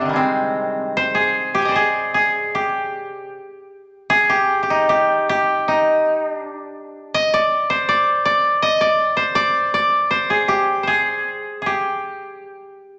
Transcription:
0.00 3.36 C3 soft
0.00 0.19 D3 soft
0.00 1.71 D4 medium
0.00 0.19 G4 medium
0.06 1.74 D#3 soft
0.06 1.21 G3 soft
0.13 1.61 G#3 soft
0.13 2.76 C4 medium
0.97 1.71 C5 medium
1.15 1.61 G#4 medium
1.55 1.82 G4 medium
1.55 2.61 G#5 soft
1.62 3.20 D#5 soft
1.62 1.82 G5 soft
1.69 3.43 C5 soft
1.69 3.29 D5 soft
1.76 2.14 G#4 medium
2.14 2.61 G#4 medium
2.55 4.16 G4 medium
4.10 4.36 G#4 medium
4.30 4.62 G4 medium
4.63 4.89 G4 soft
4.70 5.68 D#4 medium
4.89 5.29 G4 medium
5.29 7.33 G4 medium
5.68 6.30 D#4 medium
6.30 7.40 D4 medium
7.14 7.40 D#5 medium
7.34 7.88 D5 medium
7.70 9.16 C5 medium
7.89 8.25 D5 medium
8.25 8.68 D5 medium
8.62 8.87 D#5 medium
8.81 9.35 D5 medium
9.17 10.10 C5 medium
9.35 9.74 D5 medium
9.74 11.34 D5 medium
10.11 10.83 C5 medium
10.30 10.54 G#4 medium
10.48 10.93 G4 medium
10.83 12.55 C5 soft
10.87 11.61 G#4 medium
11.62 11.72 G#4 soft
11.66 12.99 G4 medium

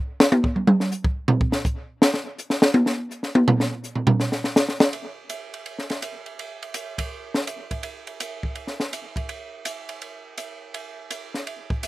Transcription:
0.20 snare loud
0.20 hi-hat pedal medium
0.32 high tom medium
0.44 kick medium
0.56 mid tom soft
0.67 mid tom medium
0.80 snare soft
0.91 hi-hat pedal medium
1.04 kick medium
1.28 floor tom medium
1.41 kick medium
1.52 snare medium
1.65 kick medium
1.65 hi-hat pedal medium
2.02 snare loud
2.14 snare soft
2.38 hi-hat pedal medium
2.50 snare medium
2.62 snare loud
2.74 high tom medium
2.86 snare medium
3.11 hi-hat pedal medium
3.23 snare soft
3.35 high tom medium
3.48 floor tom medium
3.60 snare medium
3.84 hi-hat pedal medium
3.95 floor tom medium
4.07 floor tom loud
4.20 snare soft
4.32 snare soft
4.44 snare soft
4.56 snare medium
4.56 hi-hat pedal medium
4.68 snare soft
4.80 snare loud
4.93 ride medium
5.30 hi-hat pedal soft
5.30 ride medium
5.54 ride soft
5.66 ride soft
5.79 snare soft
5.90 snare soft
5.90 ride soft
6.02 hi-hat pedal soft
6.02 ride medium
6.26 ride soft
6.39 ride medium
6.63 ride soft
6.74 hi-hat pedal medium
6.74 ride medium
6.98 kick soft
6.98 ride medium
7.34 snare medium
7.47 hi-hat pedal medium
7.47 ride medium
7.71 kick soft
7.71 ride soft
7.83 ride medium
8.07 ride soft
8.20 hi-hat pedal medium
8.20 ride medium
8.43 kick medium
8.55 ride soft
8.67 snare soft
8.80 snare soft
8.93 hi-hat pedal medium
8.93 ride medium
9.16 kick soft
9.16 ride soft
9.29 ride soft
9.65 hi-hat pedal medium
9.65 ride medium
9.89 ride soft
10.02 ride soft
10.38 hi-hat pedal soft
10.38 ride medium
10.74 ride medium
11.11 hi-hat pedal medium
11.11 ride medium
11.34 snare soft
11.47 ride soft
11.70 kick medium
11.83 hi-hat pedal medium
11.83 ride medium

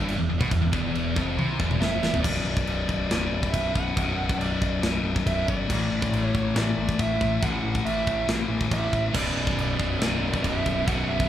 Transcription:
0.00 0.17 G1 medium
0.00 0.18 G2 loud
0.08 china medium
0.18 0.29 E1 medium
0.18 0.28 E2 medium
0.29 0.40 E1 medium
0.29 0.40 E2 medium
0.41 0.51 B1 loud
0.41 0.51 B2 loud
0.41 kick loud
0.51 0.60 E1 medium
0.51 0.60 E2 medium
0.51 kick loud
0.51 china medium
0.61 0.71 E1 medium
0.61 0.71 E2 medium
0.73 1.13 E1 medium
0.73 1.15 E2 loud
0.73 kick loud
0.95 china medium
1.16 1.36 F1 loud
1.16 1.37 F2 loud
1.16 kick loud
1.37 1.57 C2 medium
1.37 1.59 C3 loud
1.37 high tom medium
1.59 1.79 E1 loud
1.59 1.80 E2 loud
1.59 kick medium
1.71 mid tom medium
1.80 2.01 F1 loud
1.80 2.02 F2 loud
1.80 1.99 E5 medium
1.80 snare loud
2.01 2.13 E1 medium
2.01 2.13 E2 loud
2.01 2.21 E5 medium
2.01 snare loud
2.13 2.23 F1 medium
2.13 2.22 F2 loud
2.13 floor tom loud
2.21 2.41 B0 medium
2.21 3.09 B1 medium
2.21 3.10 F#2 loud
2.21 3.07 D5 medium
2.21 kick loud
2.21 crash loud
2.21 china medium
2.26 3.12 B2 loud
2.44 2.61 B0 medium
2.57 kick loud
2.66 2.83 B0 medium
2.66 china medium
2.89 3.05 B0 loud
2.89 kick medium
3.08 3.27 B0 loud
3.08 3.94 B1 medium
3.08 3.96 F#2 medium
3.08 3.50 D5 medium
3.08 snare loud
3.08 china medium
3.12 3.97 B2 medium
3.32 3.49 B0 loud
3.43 kick medium
3.51 3.70 B0 medium
3.51 3.72 E5 loud
3.51 kick loud
3.51 china medium
3.72 3.92 B0 medium
3.72 4.41 F#5 loud
3.72 kick medium
3.95 4.13 B0 loud
3.95 4.81 B1 loud
3.95 4.83 F#2 loud
3.95 4.83 B2 loud
3.95 kick loud
3.95 china medium
4.18 4.35 B0 medium
4.29 kick loud
4.39 4.56 B0 medium
4.39 4.80 D5 medium
4.39 china medium
4.61 4.78 B0 medium
4.61 kick medium
4.82 4.99 B0 medium
4.82 5.67 B1 medium
4.82 5.69 F#2 medium
4.82 5.70 B2 medium
4.82 snare loud
4.82 china medium
5.04 5.20 B0 medium
5.16 kick medium
5.26 5.43 B0 loud
5.26 5.49 E5 medium
5.26 kick medium
5.26 china medium
5.48 5.65 G1 medium
5.48 6.22 D5 medium
5.48 kick medium
5.68 5.86 A1 loud
5.68 6.54 A2 loud
5.68 6.56 E3 loud
5.68 6.57 A3 loud
5.68 kick loud
5.68 crash loud
5.68 china medium
5.91 6.08 A1 medium
6.02 kick loud
6.12 6.29 A1 loud
6.12 china medium
6.22 6.56 C#5 medium
6.35 6.51 A1 loud
6.35 kick medium
6.55 6.72 A1 loud
6.55 7.40 A2 medium
6.55 7.41 E3 medium
6.55 7.42 A3 loud
6.55 7.00 D5 loud
6.55 snare loud
6.55 china medium
6.77 6.94 A1 loud
6.89 kick medium
6.99 7.15 A1 loud
6.99 7.44 E5 loud
6.99 kick medium
6.99 china medium
7.21 7.37 A1 medium
7.21 kick loud
7.41 7.59 A1 loud
7.41 8.26 A2 medium
7.41 8.27 E3 loud
7.41 8.28 A3 loud
7.41 7.83 F#5 loud
7.41 kick loud
7.41 china medium
7.63 7.80 A1 medium
7.75 kick medium
7.85 8.02 A1 medium
7.85 8.26 E5 medium
7.85 china medium
8.07 8.23 A1 medium
8.07 kick medium
8.27 8.44 A1 loud
8.27 9.12 A2 medium
8.27 9.14 E3 medium
8.27 9.14 A3 medium
8.27 snare loud
8.27 china medium
8.48 8.65 A1 loud
8.61 kick medium
8.71 8.88 A1 loud
8.71 9.16 E5 medium
8.71 kick medium
8.71 china medium
8.93 9.09 A1 medium
8.93 kick medium
9.13 9.31 B0 medium
9.13 9.99 B1 loud
9.13 9.99 F#2 loud
9.13 10.03 B2 loud
9.13 9.99 D5 medium
9.13 kick loud
9.13 china medium
9.13 crash loud
9.35 9.51 B0 medium
9.47 kick loud
9.57 9.73 B0 medium
9.57 china medium
9.78 9.95 B0 loud
9.78 10.42 B1 medium
9.78 10.42 F#2 medium
9.78 10.42 B2 loud
9.78 kick medium
9.99 10.16 B0 loud
9.99 10.84 B1 medium
9.99 10.86 F#2 medium
9.99 10.87 B2 loud
9.99 10.43 D5 medium
9.99 snare loud
9.99 china medium
10.21 10.37 B0 loud
10.34 kick medium
10.43 10.60 B0 loud
10.43 10.85 B1 medium
10.43 10.86 F#2 medium
10.43 10.86 B2 medium
10.43 10.88 E5 loud
10.43 kick medium
10.43 china medium
10.66 10.82 B0 medium
10.66 kick loud
10.85 11.03 B0 loud
10.85 11.29 B1 loud
10.85 11.29 F#2 loud
10.85 11.29 B2 loud
10.85 11.09 F#5 loud
10.85 kick loud
10.85 china medium
11.07 11.24 B0 medium
11.07 11.28 E5 loud
11.20 kick loud

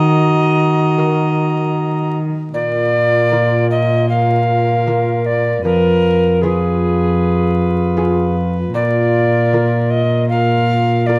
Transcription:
0.00 2.30 D#3 medium
0.00 2.18 F#4 medium
0.00 2.09 D#5 medium
0.00 2.18 A#5 medium
0.98 2.51 A#3 soft
0.98 2.51 F#4 medium
0.98 2.51 A#4 soft
2.53 5.60 A#2 medium
2.53 5.61 A#2 soft
2.53 4.06 F4 medium
2.53 4.06 A#4 medium
2.53 3.67 D5 medium
3.32 4.05 A#3 soft
3.32 4.06 F4 soft
3.32 4.06 A#4 soft
3.70 4.09 D#5 medium
4.09 5.61 F4 medium
4.09 5.61 A#4 medium
4.09 5.27 F5 medium
4.87 5.60 A#3 soft
4.87 5.61 F4 soft
4.87 5.61 A#4 medium
5.26 5.63 D5 medium
5.63 8.70 F2 medium
5.63 8.71 F2 medium
5.63 6.40 F4 medium
5.63 6.43 A#4 loud
5.63 6.40 B4 medium
6.41 7.16 B3 soft
6.41 8.58 F4 medium
6.41 7.16 F4 soft
6.41 8.36 G#4 medium
6.41 7.17 G#4 medium
6.41 8.75 B4 medium
7.97 8.70 B3 medium
7.97 8.71 F4 soft
7.97 8.71 G#4 medium
8.74 11.19 A#2 medium
8.74 9.99 F4 medium
8.74 10.28 A#4 medium
8.74 9.92 D5 medium
9.53 10.26 A#3 soft
9.53 10.26 F4 soft
9.53 10.26 A#4 medium
9.90 10.28 D#5 medium
10.29 11.03 F4 medium
10.29 11.05 A#4 medium
10.29 11.08 F5 loud
11.06 11.19 A#3 soft
11.06 11.19 F4 medium
11.06 11.19 F4 soft
11.06 11.19 A#4 medium
11.06 11.19 D5 medium

